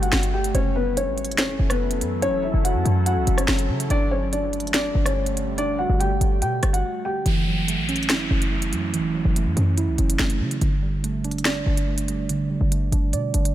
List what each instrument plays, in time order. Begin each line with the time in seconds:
Already playing: 808-style bass G1, ambient pad D3 G3 A3
0.02 grand piano F#4 F#5, closed hi-hat
0.12 808-style bass G1, finger snap, snare
0.23 closed hi-hat
0.34 grand piano G4 G5
0.44 closed hi-hat
0.55 808-style bass F#1, ambient pad F#3 C#4 E4 A4, grand piano C#4 C#5, closed hi-hat
0.76 grand piano B3 B4
0.97 grand piano C#4 C#5, closed hi-hat
1.07 808-style bass A1
1.18 closed hi-hat
1.25 closed hi-hat
1.32 808-style bass F#1, closed hi-hat
1.38 grand piano C#4 C#5, finger snap, snare, closed hi-hat
1.60 808-style bass F#1
1.70 grand piano B3 B4, cross-stick, closed hi-hat
1.91 closed hi-hat
2.01 808-style bass F#2, closed hi-hat
2.22 grand piano C#4 C#5, closed hi-hat
2.28 808-style bass F#1
2.43 grand piano E4 E5
2.54 808-style bass F#1
2.64 grand piano F#4 F#5, closed hi-hat
2.75 808-style bass F#2
2.85 808-style bass F#2, closed hi-hat
3.06 grand piano F#4 F#5, closed hi-hat
3.17 808-style bass C#2
3.27 808-style bass F#1, closed hi-hat
3.38 grand piano C#4 C#5, cross-stick, closed hi-hat
3.48 808-style bass F#1, finger snap, snare
3.59 closed hi-hat
3.69 808-style bass C#3
3.80 closed hi-hat
3.90 808-style bass G1, ambient pad D3 G3 A3, grand piano D4 D5, closed hi-hat
4.11 grand piano C#4 C#5
4.32 grand piano D4 D5, closed hi-hat
4.53 closed hi-hat
4.60 closed hi-hat
4.67 closed hi-hat
4.74 grand piano D4 D5, finger snap, snare, closed hi-hat
4.95 808-style bass G1
5.06 grand piano C#4 C#5, cross-stick, closed hi-hat
5.26 closed hi-hat
5.37 closed hi-hat
5.58 grand piano D4 D5, closed hi-hat
5.79 grand piano F#4 F#5
5.89 808-style bass G1
6.00 grand piano G4 G5, closed hi-hat
6.21 808-style bass G1, closed hi-hat
6.42 808-style bass B2, grand piano G4 G5, closed hi-hat
6.63 808-style bass G1, cross-stick, closed hi-hat
6.73 grand piano F#4 F#5, closed hi-hat
7.05 grand piano G4 G5
7.26 808-style bass F#1, synth keys E3, closed hi-hat, downlifter
7.47 synth keys F#3
7.68 synth keys A3, closed hi-hat
7.78 808-style bass A1
7.89 synth keys C#4, closed hi-hat
7.96 closed hi-hat
8.03 808-style bass F#1, closed hi-hat
8.09 synth keys E4, finger snap, snare, closed hi-hat
8.31 808-style bass F#1, synth keys C#4
8.42 closed hi-hat
8.52 synth keys A3
8.62 closed hi-hat
8.73 808-style bass F#2, synth keys F#3, closed hi-hat
8.94 synth keys E3, closed hi-hat
8.99 808-style bass F#1
9.14 synth keys F#3
9.25 808-style bass F#1
9.36 synth keys A3, closed hi-hat
9.46 808-style bass F#2
9.56 808-style bass F#2, synth keys C#4, closed hi-hat
9.78 synth keys E4, closed hi-hat
9.88 808-style bass C#2
9.98 808-style bass F#1, synth keys C#4, closed hi-hat
10.10 closed hi-hat
10.19 808-style bass F#1, synth keys A3, finger snap, snare
10.30 closed hi-hat
10.40 808-style bass C#3, synth keys F#3
10.51 closed hi-hat
10.61 808-style bass G1, synth keys D3, closed hi-hat
10.83 synth keys G3
11.04 synth keys A3, closed hi-hat
11.24 synth keys D4, closed hi-hat
11.31 closed hi-hat
11.38 closed hi-hat
11.45 synth keys D5, finger snap, snare, closed hi-hat
11.66 808-style bass G1, synth keys D4
11.77 closed hi-hat
11.87 synth keys A3
11.98 closed hi-hat
12.08 synth keys G3, closed hi-hat
12.29 synth keys D3, closed hi-hat
12.50 synth keys G3
12.61 808-style bass G1
12.71 synth keys A3, closed hi-hat
12.92 808-style bass G1, synth keys D4, closed hi-hat
13.13 808-style bass B2, synth keys D5, closed hi-hat
13.34 808-style bass G1, synth keys D4, closed hi-hat
13.45 closed hi-hat